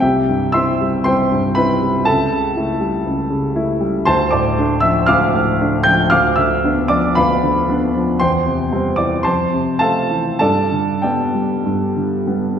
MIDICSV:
0, 0, Header, 1, 2, 480
1, 0, Start_track
1, 0, Key_signature, 0, "major"
1, 0, Tempo, 505476
1, 30, Time_signature, 4, 2, 24, 8
1, 5310, Tempo, 522648
1, 8670, Tempo, 564972
1, 9150, Tempo, 612245
1, 11328, End_track
2, 0, Start_track
2, 0, Title_t, "Grand piano"
2, 0, Program_c, 0, 0
2, 0, Control_c, 0, 64, 127
2, 3, Note_on_c, 0, 79, 74
2, 11, Note_on_c, 0, 76, 54
2, 17, Note_on_c, 0, 67, 55
2, 19, Note_on_c, 0, 36, 50
2, 47, Control_c, 0, 64, 0
2, 165, Control_c, 0, 64, 127
2, 271, Note_on_c, 0, 43, 40
2, 479, Note_off_c, 0, 76, 0
2, 482, Note_off_c, 0, 67, 0
2, 497, Note_on_c, 0, 88, 81
2, 509, Note_on_c, 0, 76, 63
2, 510, Note_off_c, 0, 79, 0
2, 511, Note_on_c, 0, 84, 65
2, 512, Note_on_c, 0, 60, 41
2, 518, Note_on_c, 0, 64, 48
2, 670, Note_off_c, 0, 43, 0
2, 740, Note_off_c, 0, 60, 0
2, 743, Note_off_c, 0, 64, 0
2, 769, Note_on_c, 0, 55, 40
2, 971, Note_off_c, 0, 76, 0
2, 972, Note_off_c, 0, 84, 0
2, 978, Note_off_c, 0, 36, 0
2, 990, Note_on_c, 0, 84, 85
2, 1000, Note_off_c, 0, 88, 0
2, 1000, Note_on_c, 0, 72, 65
2, 1003, Note_on_c, 0, 79, 65
2, 1005, Note_on_c, 0, 36, 47
2, 1156, Note_off_c, 0, 55, 0
2, 1250, Note_on_c, 0, 43, 43
2, 1450, Note_off_c, 0, 72, 0
2, 1452, Note_off_c, 0, 79, 0
2, 1470, Note_on_c, 0, 83, 83
2, 1479, Note_off_c, 0, 84, 0
2, 1481, Note_on_c, 0, 71, 68
2, 1489, Note_on_c, 0, 60, 44
2, 1492, Note_on_c, 0, 64, 49
2, 1632, Note_off_c, 0, 43, 0
2, 1703, Note_off_c, 0, 60, 0
2, 1704, Note_off_c, 0, 64, 0
2, 1731, Note_on_c, 0, 55, 45
2, 1924, Note_off_c, 0, 71, 0
2, 1930, Note_off_c, 0, 36, 0
2, 1950, Note_on_c, 0, 81, 75
2, 1953, Note_off_c, 0, 83, 0
2, 1962, Note_on_c, 0, 69, 61
2, 1963, Note_on_c, 0, 76, 57
2, 1965, Note_off_c, 0, 55, 0
2, 1973, Note_on_c, 0, 37, 59
2, 1979, Control_c, 0, 64, 0
2, 2118, Control_c, 0, 64, 127
2, 2207, Note_on_c, 0, 49, 41
2, 2437, Note_on_c, 0, 57, 46
2, 2438, Note_on_c, 0, 64, 47
2, 2576, Note_off_c, 0, 49, 0
2, 2644, Note_off_c, 0, 57, 0
2, 2644, Note_off_c, 0, 64, 0
2, 2665, Note_on_c, 0, 55, 39
2, 2879, Note_off_c, 0, 37, 0
2, 2905, Note_on_c, 0, 37, 51
2, 3047, Note_off_c, 0, 55, 0
2, 3136, Note_on_c, 0, 49, 45
2, 3373, Note_on_c, 0, 57, 46
2, 3380, Note_on_c, 0, 64, 54
2, 3524, Note_off_c, 0, 49, 0
2, 3585, Note_off_c, 0, 69, 0
2, 3585, Note_off_c, 0, 76, 0
2, 3593, Note_off_c, 0, 57, 0
2, 3597, Note_off_c, 0, 64, 0
2, 3615, Note_on_c, 0, 55, 47
2, 3617, Note_off_c, 0, 81, 0
2, 3835, Note_off_c, 0, 37, 0
2, 3850, Note_on_c, 0, 84, 88
2, 3858, Note_off_c, 0, 55, 0
2, 3859, Note_on_c, 0, 81, 74
2, 3860, Note_on_c, 0, 72, 74
2, 3865, Note_on_c, 0, 38, 62
2, 3879, Control_c, 0, 64, 0
2, 4019, Control_c, 0, 64, 127
2, 4086, Note_off_c, 0, 72, 0
2, 4086, Note_off_c, 0, 81, 0
2, 4089, Note_on_c, 0, 86, 67
2, 4098, Note_off_c, 0, 84, 0
2, 4101, Note_on_c, 0, 74, 53
2, 4101, Note_on_c, 0, 81, 51
2, 4106, Note_on_c, 0, 45, 45
2, 4352, Note_on_c, 0, 57, 46
2, 4357, Note_on_c, 0, 62, 53
2, 4494, Note_off_c, 0, 45, 0
2, 4553, Note_off_c, 0, 74, 0
2, 4553, Note_off_c, 0, 81, 0
2, 4562, Note_on_c, 0, 88, 83
2, 4567, Note_off_c, 0, 57, 0
2, 4570, Note_off_c, 0, 62, 0
2, 4575, Note_on_c, 0, 76, 67
2, 4581, Note_off_c, 0, 86, 0
2, 4584, Note_on_c, 0, 53, 41
2, 4800, Note_off_c, 0, 38, 0
2, 4804, Note_off_c, 0, 76, 0
2, 4810, Note_on_c, 0, 89, 84
2, 4814, Note_off_c, 0, 88, 0
2, 4819, Note_on_c, 0, 77, 70
2, 4823, Note_on_c, 0, 86, 71
2, 4828, Note_on_c, 0, 38, 55
2, 4969, Note_off_c, 0, 53, 0
2, 5075, Note_on_c, 0, 45, 48
2, 5328, Note_on_c, 0, 57, 45
2, 5328, Note_on_c, 0, 62, 52
2, 5456, Note_off_c, 0, 45, 0
2, 5508, Note_off_c, 0, 77, 0
2, 5510, Note_off_c, 0, 86, 0
2, 5533, Note_on_c, 0, 91, 101
2, 5534, Note_off_c, 0, 57, 0
2, 5534, Note_off_c, 0, 62, 0
2, 5540, Note_off_c, 0, 89, 0
2, 5541, Note_on_c, 0, 79, 68
2, 5546, Note_on_c, 0, 53, 47
2, 5760, Note_off_c, 0, 38, 0
2, 5767, Note_off_c, 0, 79, 0
2, 5775, Note_on_c, 0, 89, 90
2, 5780, Note_off_c, 0, 91, 0
2, 5784, Note_on_c, 0, 86, 71
2, 5786, Note_on_c, 0, 77, 66
2, 5787, Note_off_c, 0, 53, 0
2, 5793, Note_on_c, 0, 38, 54
2, 5805, Control_c, 0, 64, 0
2, 5952, Control_c, 0, 64, 127
2, 6010, Note_off_c, 0, 86, 0
2, 6011, Note_off_c, 0, 77, 0
2, 6012, Note_on_c, 0, 88, 80
2, 6022, Note_off_c, 0, 89, 0
2, 6022, Note_on_c, 0, 76, 55
2, 6026, Note_on_c, 0, 50, 39
2, 6274, Note_on_c, 0, 59, 46
2, 6276, Note_on_c, 0, 62, 49
2, 6415, Note_off_c, 0, 50, 0
2, 6477, Note_off_c, 0, 76, 0
2, 6492, Note_off_c, 0, 59, 0
2, 6493, Note_off_c, 0, 62, 0
2, 6496, Note_on_c, 0, 86, 81
2, 6506, Note_off_c, 0, 88, 0
2, 6507, Note_on_c, 0, 74, 59
2, 6512, Note_on_c, 0, 53, 40
2, 6728, Note_off_c, 0, 38, 0
2, 6733, Note_off_c, 0, 74, 0
2, 6744, Note_on_c, 0, 83, 91
2, 6745, Note_off_c, 0, 86, 0
2, 6755, Note_on_c, 0, 71, 63
2, 6759, Note_on_c, 0, 77, 63
2, 6761, Note_on_c, 0, 38, 51
2, 6895, Note_off_c, 0, 53, 0
2, 6999, Note_on_c, 0, 50, 41
2, 7239, Note_on_c, 0, 59, 47
2, 7245, Note_on_c, 0, 62, 49
2, 7373, Note_off_c, 0, 50, 0
2, 7447, Note_off_c, 0, 59, 0
2, 7451, Note_off_c, 0, 62, 0
2, 7467, Note_on_c, 0, 53, 46
2, 7665, Note_off_c, 0, 71, 0
2, 7667, Note_off_c, 0, 77, 0
2, 7677, Note_off_c, 0, 38, 0
2, 7697, Note_off_c, 0, 83, 0
2, 7701, Note_on_c, 0, 84, 89
2, 7703, Note_off_c, 0, 53, 0
2, 7710, Note_on_c, 0, 72, 61
2, 7711, Note_on_c, 0, 79, 61
2, 7715, Control_c, 0, 64, 0
2, 7715, Note_on_c, 0, 40, 53
2, 7834, Control_c, 0, 64, 127
2, 7944, Note_on_c, 0, 48, 40
2, 8187, Note_on_c, 0, 55, 43
2, 8189, Note_on_c, 0, 60, 48
2, 8328, Note_off_c, 0, 48, 0
2, 8391, Note_off_c, 0, 72, 0
2, 8392, Note_off_c, 0, 79, 0
2, 8403, Note_off_c, 0, 55, 0
2, 8404, Note_off_c, 0, 60, 0
2, 8405, Note_on_c, 0, 86, 72
2, 8419, Note_on_c, 0, 74, 52
2, 8422, Note_on_c, 0, 52, 38
2, 8423, Note_off_c, 0, 84, 0
2, 8648, Note_off_c, 0, 40, 0
2, 8651, Note_off_c, 0, 74, 0
2, 8651, Note_on_c, 0, 84, 79
2, 8661, Note_off_c, 0, 86, 0
2, 8663, Note_on_c, 0, 72, 61
2, 8664, Note_on_c, 0, 81, 58
2, 8669, Note_on_c, 0, 41, 50
2, 8670, Note_off_c, 0, 52, 0
2, 8684, Control_c, 0, 64, 0
2, 8832, Control_c, 0, 64, 127
2, 8904, Note_on_c, 0, 48, 42
2, 9113, Note_off_c, 0, 72, 0
2, 9113, Note_off_c, 0, 81, 0
2, 9129, Note_on_c, 0, 81, 79
2, 9141, Note_off_c, 0, 84, 0
2, 9142, Note_on_c, 0, 77, 62
2, 9144, Note_on_c, 0, 69, 58
2, 9147, Note_on_c, 0, 57, 43
2, 9148, Note_on_c, 0, 60, 46
2, 9287, Note_off_c, 0, 48, 0
2, 9357, Note_off_c, 0, 57, 0
2, 9358, Note_off_c, 0, 60, 0
2, 9379, Note_on_c, 0, 52, 37
2, 9588, Note_off_c, 0, 77, 0
2, 9590, Note_off_c, 0, 69, 0
2, 9591, Note_off_c, 0, 81, 0
2, 9595, Note_off_c, 0, 41, 0
2, 9602, Note_on_c, 0, 81, 75
2, 9613, Note_on_c, 0, 69, 61
2, 9616, Note_on_c, 0, 74, 57
2, 9619, Note_on_c, 0, 43, 50
2, 9622, Note_off_c, 0, 52, 0
2, 9639, Control_c, 0, 64, 0
2, 9776, Control_c, 0, 64, 127
2, 9861, Note_on_c, 0, 50, 36
2, 10078, Note_off_c, 0, 69, 0
2, 10080, Note_off_c, 0, 74, 0
2, 10093, Note_on_c, 0, 79, 59
2, 10100, Note_on_c, 0, 67, 41
2, 10104, Note_off_c, 0, 81, 0
2, 10104, Note_on_c, 0, 55, 38
2, 10104, Note_on_c, 0, 74, 43
2, 10110, Note_on_c, 0, 59, 42
2, 10257, Note_off_c, 0, 50, 0
2, 10330, Note_off_c, 0, 55, 0
2, 10334, Note_off_c, 0, 59, 0
2, 10350, Note_on_c, 0, 55, 37
2, 10573, Note_off_c, 0, 43, 0
2, 10593, Note_on_c, 0, 43, 44
2, 10744, Note_off_c, 0, 55, 0
2, 10836, Note_on_c, 0, 50, 35
2, 11038, Note_off_c, 0, 67, 0
2, 11040, Note_off_c, 0, 74, 0
2, 11066, Note_off_c, 0, 79, 0
2, 11073, Note_on_c, 0, 55, 41
2, 11079, Note_on_c, 0, 59, 43
2, 11212, Note_off_c, 0, 50, 0
2, 11284, Note_off_c, 0, 55, 0
2, 11287, Note_off_c, 0, 59, 0
2, 11328, Note_off_c, 0, 43, 0
2, 11328, End_track
0, 0, End_of_file